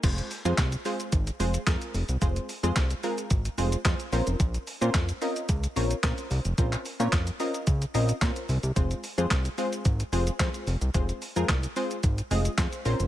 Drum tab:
CC |x---------------|----------------|----------------|----------------|
HH |xxoxxxoxxxoxxxox|xxoxxxoxxxoxxxox|xxoxxxoxxxoxxxox|xxoxxxoxxxoxxxox|
SH |xxxxxxxxxxxxxxxx|xxxxxxxxxxxxxxxx|xxxxxxxxxxxxxxxx|xxxxxxxxxxxxxxxx|
CP |----x-------x---|----x-------x---|----x-------x---|-x--x-------x---|
SD |----o-------o---|----o-------o---|----o-------o---|----o-------o---|
BD |o---o---o---o---|o---o---o---o---|o---o---o---o---|o---o---o---o---|

CC |----------------|----------------|
HH |xxoxxxoxxxoxxxox|xxoxxxoxxxoxxxox|
SH |xxxxxxxxxxxxxxxx|xxxxxxxxxxxxxxxx|
CP |----x-------x---|----x-------x---|
SD |----o-------o---|----o-------o---|
BD |o---o---o---o---|o---o---o---o---|